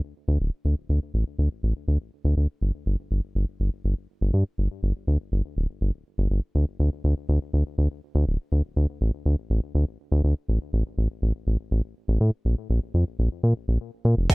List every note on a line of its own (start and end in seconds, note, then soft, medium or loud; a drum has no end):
0.28 0.38 D2 medium
0.40 0.50 D1 medium
0.65 0.75 D2 medium
0.89 1.00 D2 medium
1.14 1.24 A1 medium
1.39 1.49 D2 medium
1.63 1.73 A1 medium
1.88 1.98 D2 medium
2.25 2.35 D2 medium
2.37 2.47 D2 medium
2.61 2.72 G1 medium
2.86 2.96 G1 medium
3.11 3.21 G1 medium
3.35 3.46 G1 medium
3.60 3.70 G1 medium
3.84 3.95 G1 medium
4.21 4.32 G1 medium
4.34 4.44 G2 medium
4.58 4.68 G1 medium
4.83 4.93 G1 medium
5.07 5.18 D2 medium
5.32 5.42 G1 medium
5.56 5.67 D1 medium
5.81 5.91 G1 medium
6.18 6.28 G1 medium
6.30 6.41 G1 medium
6.55 6.65 D2 medium
6.80 6.90 D2 medium
7.04 7.14 D2 medium
7.29 7.39 D2 medium
7.53 7.64 D2 medium
7.78 7.88 D2 medium
8.15 8.25 D2 medium
8.27 8.37 D1 medium
8.52 8.62 D2 medium
8.76 8.87 D2 medium
9.01 9.11 A1 medium
9.26 9.36 D2 medium
9.50 9.60 A1 medium
9.75 9.85 D2 medium
10.12 10.22 D2 medium
10.24 10.34 D2 medium
10.48 10.59 A1 medium
10.73 10.83 A1 medium
10.98 11.08 A1 medium
11.22 11.32 A1 medium
11.47 11.57 A1 medium
11.71 11.82 A1 medium
12.08 12.18 A1 medium
12.21 12.31 A2 medium
12.45 12.55 A#1 medium
12.70 12.80 A#1 medium
12.94 13.05 F2 medium
13.19 13.29 A#1 medium
13.43 13.54 A#2 medium
13.68 13.78 A#1 medium
14.05 14.15 A#2 medium
14.17 14.27 F1 medium
14.30 kick loud
14.30 closed hi-hat medium
14.30 crash loud